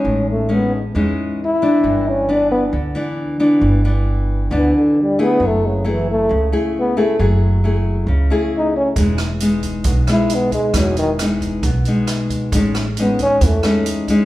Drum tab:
HH |--------|--------|--------|--------|
SD |--------|--------|--------|--------|
BD |--------|--------|--------|--------|

HH |--------|xxxxxxxx|xxxxxxxx|xxxxxxxx|
SD |--------|-r---r--|r-r---r-|-r---r--|
BD |--------|o--oo--o|o--oo--o|o--oo--o|